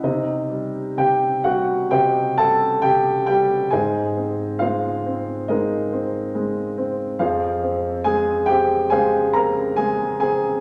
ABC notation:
X:1
M:4/4
L:1/8
Q:1/4=69
K:Clyd
V:1 name="Grand piano"
[_EGc_e]2 [Gg] [Ff] [Gceg] [Aa] [Gg] [Gg] | [^G^B^d^g]2 [=FB=f]2 [^D^ABd]2 z2 | [=F_Ac=f]2 [A_a] [Gg] [Acfa] [_B_b] [Aa] [Aa] |]
V:2 name="Grand piano" clef=bass
C, G, C, G, C, G, C, G, | ^G,, ^B, ^G, B, G, B, G, B, | =F,, C _A, C A, C A, C |]